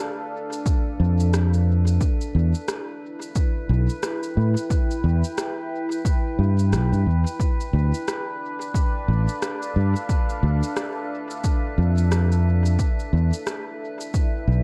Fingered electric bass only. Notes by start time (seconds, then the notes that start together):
1.00 F2
2.35 E2
3.69 B1
4.37 A2
5.04 E2
6.39 G2
6.72 B1
6.92 G2
7.06 E2
7.73 D2
9.08 A1
9.76 G2
10.43 D2
11.78 F2
13.13 E2
14.47 B1